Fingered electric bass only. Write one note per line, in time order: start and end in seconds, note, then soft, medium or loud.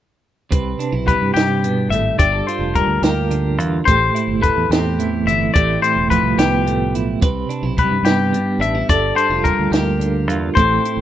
0.53 0.74 C2 medium
0.93 1.14 B1 medium
1.22 1.32 G2 medium
1.35 1.91 G2 medium
1.89 2.11 G#1 medium
2.19 2.41 G1 medium
2.59 2.81 F1 medium
2.87 2.98 D2 medium
3.02 3.58 D2 medium
3.58 3.80 E2 medium
3.88 4.09 A1 loud
4.27 4.49 G1 medium
4.57 4.67 E2 medium
4.69 5.27 E2 medium
5.26 5.47 G1 medium
5.56 5.77 A1 medium
5.96 6.17 E1 medium
6.23 6.34 C2 medium
6.38 6.94 C2 medium
6.94 7.15 B1 medium
7.23 7.43 C2 medium
7.63 7.84 B1 medium
7.91 8.02 G2 medium
8.03 8.60 G2 medium
8.59 8.81 A1 medium
8.90 9.11 G1 medium
9.30 9.51 F1 medium
9.59 9.69 D2 medium
9.71 10.28 D2 medium
10.28 10.49 E2 medium
10.57 10.78 A1 medium
10.97 11.01 G1 medium